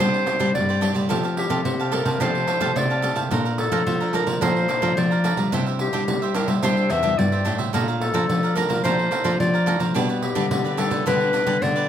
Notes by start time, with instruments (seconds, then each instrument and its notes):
0.00 nylon-string guitar C3 G3 C4 D4, cavaquinho D4 G4 C5 D5, clarinet C5, pandeiro
0.14 pandeiro
0.26 cavaquinho D4 G4 C5 D5, pandeiro
0.39 nylon-string guitar G3 C4 D4, cavaquinho D4 G4 C5 D5, pandeiro
0.55 nylon-string guitar G2 G3, clarinet D5, pandeiro
0.69 cavaquinho G4 C5 D5, pandeiro
0.81 nylon-string guitar G3 C4 D4, cavaquinho D4 G4 C5 D5, pandeiro
0.94 nylon-string guitar G3, cavaquinho G4 C5 D5, pandeiro
1.09 nylon-string guitar F3 A3 C4 G4, cavaquinho G4 A4 F5 A5, pandeiro
1.23 cavaquinho G4 F5 A5, pandeiro
1.37 clarinet G4, pandeiro
1.50 nylon-string guitar C3 A3 C4 G4, cavaquinho G4 A4 F5 A5, pandeiro
1.65 nylon-string guitar C3, pandeiro
1.80 cavaquinho G4 F5 A5, pandeiro
1.92 nylon-string guitar A3 C4 G4, cavaquinho G4 A4 F5 A5, clarinet A#4, pandeiro
2.05 nylon-string guitar C3, cavaquinho G4 F5 A5, pandeiro
2.20 nylon-string guitar C3 F3 A3 C4 G4, cavaquinho G4 A4 F5 A5, clarinet C5, pandeiro
2.35 pandeiro
2.47 cavaquinho G4 A4 F5 A5, pandeiro
2.60 nylon-string guitar C3 A3 C4 G4, cavaquinho G4 A4 F5 A5, pandeiro
2.76 nylon-string guitar C3, clarinet D5, pandeiro
2.90 cavaquinho G4 F5 A5, pandeiro
3.02 nylon-string guitar A3 C4 G4, cavaquinho G4 A4 F5 A5, pandeiro
3.16 nylon-string guitar C3, cavaquinho G4 F5 A5, pandeiro
3.31 nylon-string guitar A#2 A3 D4 F4, cavaquinho A4 D5 F5 A#5, pandeiro
3.45 cavaquinho D5 F5 A#5, pandeiro
3.58 clarinet A4, pandeiro
3.72 nylon-string guitar F3 A3 D4 F4, cavaquinho A4 D5 F5 A#5, pandeiro
3.86 nylon-string guitar F3, pandeiro
4.00 cavaquinho D5 F5 A#5, pandeiro
4.13 nylon-string guitar A3 D4 F4, cavaquinho A4 D5 F5 A#5, clarinet A#4, pandeiro
4.27 nylon-string guitar F3, cavaquinho D5 F5 A#5, pandeiro
4.41 nylon-string guitar A#2 F3 A3 D4 F4, cavaquinho A4 D5 F5 A#5, clarinet C5, pandeiro
4.57 pandeiro
4.68 cavaquinho A4 D5 F5 A#5, pandeiro
4.82 nylon-string guitar F3 A3 D4 F4, cavaquinho A4 D5 F5 A#5, pandeiro
4.97 nylon-string guitar F3, clarinet D5, pandeiro
5.11 cavaquinho D5 F5 A#5, pandeiro
5.24 nylon-string guitar A3 D4 F4, cavaquinho A4 D5 F5 A#5, pandeiro
5.37 nylon-string guitar G3, cavaquinho D5 F5 A#5, pandeiro
5.52 nylon-string guitar C3 G3 D4 E4, cavaquinho D4 G4 C5 E5, pandeiro
5.66 cavaquinho G4 C5 E5, pandeiro
5.79 clarinet G4, pandeiro
5.93 nylon-string guitar G3 D4 E4, cavaquinho D4 G4 C5 E5, pandeiro
6.08 nylon-string guitar G3, pandeiro
6.22 cavaquinho G4 C5 E5, pandeiro
6.34 nylon-string guitar G3 D4 E4, cavaquinho D4 G4 C5 E5, clarinet A#4, pandeiro
6.48 nylon-string guitar G3, cavaquinho G4 C5 E5, pandeiro
6.63 nylon-string guitar C3 G3 D4 E4, cavaquinho D4 G4 C5 E5, clarinet C5, pandeiro
6.77 pandeiro
6.89 nylon-string guitar E2, cavaquinho D4 G4 C5 E5, clarinet E5, pandeiro
7.03 nylon-string guitar G3 D4 E4, cavaquinho D4 G4 C5 E5, pandeiro
7.18 nylon-string guitar G2 G3, clarinet D5, pandeiro
7.32 cavaquinho G4 C5 E5, pandeiro
7.45 nylon-string guitar A2 G3 D4 E4, cavaquinho D4 G4 C5 E5, pandeiro
7.58 cavaquinho G4 C5 E5, pandeiro
7.73 nylon-string guitar A#2 A3 D4 F4, cavaquinho A4 D5 F5 A#5, pandeiro
7.88 cavaquinho D5 F5 A#5, pandeiro
8.01 clarinet A4, pandeiro
8.14 nylon-string guitar F3 A3 D4 F4, cavaquinho A4 D5 F5 A#5, pandeiro
8.29 nylon-string guitar F3, pandeiro
8.43 cavaquinho D5 F5 A#5, pandeiro
8.56 nylon-string guitar A3 D4 F4, cavaquinho A4 D5 F5 A#5, clarinet A#4, pandeiro
8.69 nylon-string guitar F3, cavaquinho D5 F5 A#5, pandeiro
8.84 nylon-string guitar A#2 F3 A3 D4 F4, cavaquinho A4 D5 F5 A#5, clarinet C5, pandeiro
8.99 pandeiro
9.11 cavaquinho A4 D5 F5 A#5, pandeiro
9.24 nylon-string guitar F3 A3 D4 F4, cavaquinho A4 D5 F5 A#5, pandeiro
9.40 nylon-string guitar F3, clarinet D5, pandeiro
9.54 cavaquinho D5 F5 A#5, pandeiro
9.66 nylon-string guitar A3 D4 F4, cavaquinho A4 D5 F5 A#5, pandeiro
9.80 nylon-string guitar F3, cavaquinho D5 F5 A#5, pandeiro
9.94 nylon-string guitar B2 G3 D4 G4, cavaquinho D4 G4 B4 D5, pandeiro
10.09 cavaquinho G4 B4 D5, pandeiro
10.23 clarinet G4, pandeiro
10.35 nylon-string guitar D3 G3 D4 G4, cavaquinho D4 G4 B4 D5, pandeiro
10.51 nylon-string guitar B2 D3, pandeiro
10.65 cavaquinho G4 B4 D5, pandeiro
10.77 nylon-string guitar G3 D4 G4, cavaquinho D4 G4 B4 D5, clarinet A4, pandeiro
10.90 nylon-string guitar D3, cavaquinho G4 B4 D5, pandeiro
11.06 nylon-string guitar B2 D3 G3 D4 G4, cavaquinho D4 G4 B4 D5, clarinet B4, pandeiro
11.21 pandeiro
11.33 cavaquinho D4 G4 B4 D5, pandeiro
11.46 nylon-string guitar D3 G3 D4 G4, cavaquinho D4 G4 B4 D5, pandeiro
11.62 nylon-string guitar B2 D3, clarinet D5, pandeiro
11.76 cavaquinho G4 B4 D5, pandeiro